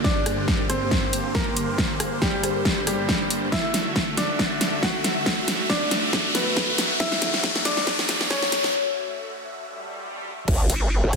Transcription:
Already playing: G2 D3 A#3 G4, riser
0.04 D4 C5 D5, kick, snare
0.26 cross-stick, closed hi-hat
0.48 kick, snare
0.70 C4 C5, cross-stick, closed hi-hat
0.91 kick, snare
1.13 closed hi-hat
1.35 A#3 A#4, kick, snare
1.57 closed hi-hat
1.78 kick, snare
2.00 cross-stick, closed hi-hat
2.22 G3 G4, kick, snare
2.44 cross-stick, closed hi-hat
2.65 kick, snare
2.87 G3 G4, cross-stick, closed hi-hat
3.09 kick, snare
3.30 closed hi-hat
3.52 A3 E4 F#4 E5, kick, snare
3.74 snare, closed hi-hat
3.96 kick, snare
4.17 D4 D5, snare, closed hi-hat
4.39 kick, snare
4.61 snare, closed hi-hat
4.83 F#4 F#5, kick, snare
5.04 snare, closed hi-hat
5.26 kick, snare
5.48 snare, closed hi-hat
5.70 D4 D5, kick, snare
5.91 snare, closed hi-hat
6.13 kick, snare
6.35 B3 B4, snare, closed hi-hat
6.57 kick, snare
6.78 snare, closed hi-hat
7.00 E4 E5, kick, snare
7.12 snare
7.22 snare, closed hi-hat
7.34 snare
7.44 kick, snare
7.55 snare
7.65 D4 D5, snare, closed hi-hat
7.77 snare
7.87 kick, snare
7.99 snare
8.09 snare, closed hi-hat
8.21 snare
8.30 C#4 C#5, kick, snare
8.42 snare
8.52 snare, closed hi-hat
8.64 snare
9.61 swell
10.48 G1, kick, crash, sub drop
10.70 G1, closed hi-hat
11.03 G1
11.13 kick, cross-stick, closed hi-hat

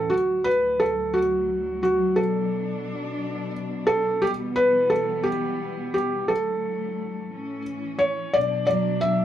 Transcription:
Already playing: A2 E3 C#4 E4 A4
0.10 D2 F#3 F#4
0.14 A2
0.44 B4
0.80 A4
1.14 F#4
1.83 F#4
2.16 B2 D4 A4
3.87 A4
4.22 E3 G3 B3 G4
4.56 B4
4.90 A4
5.23 G4
5.94 G4
6.28 A2 D3 F#3 A3 A4
7.34 A2 E3 C#4
7.99 C#5
8.33 B2 F#3 D4 D5
8.67 D5
8.71 F#3
9.01 E5
9.06 D4

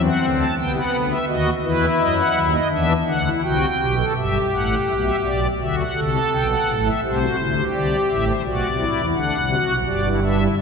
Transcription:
Already playing: C4
0.04 F#5
0.22 D2 D3
0.39 A5
0.57 C2 C3 B3 G5
0.74 F#5
0.92 D2 D3
1.10 E5
1.27 D#2 D#3 F#4 D#5
1.63 E2 E3 E4 B4
1.99 F#2 F#3 D#5
2.17 F#5
2.35 D#2 D#3
2.53 D#5
2.71 E2 E3 D4 E5
3.07 D2 D3 D4 F#5
3.25 E4
3.43 C2 C3 F#4 G5
3.80 B1 B2 G4
3.98 A4
4.16 G1 G2 G4 E5
4.52 A1 A2 F#5
4.89 B1 B2 E5
4.96 F#5
5.03 E5
5.25 B1 B2 D5
5.60 D2 D3 F#4 E5
5.78 F#5
5.96 C2 C3 A4
6.14 A5
6.32 B1 B2 G5
6.50 F#5
6.67 A1 A2
6.85 E5
7.03 C2 C3 G4 C5
7.21 F#4
7.39 D2 D3 E4
7.57 G4
7.74 C2 C3 D5
8.10 A1 A2 E5
8.27 C5
8.45 B1 B2 F#4 D5
8.62 C2 C3
8.79 E4
8.97 E2 E3
9.15 D2 D3 D4 F#5
9.33 C2 C3
9.51 F#4
9.69 B1 B2
9.86 G1 G2 G4 D5
10.04 E4
10.22 D4 E5
10.40 E4
10.58 A1 A2 F#4 D5

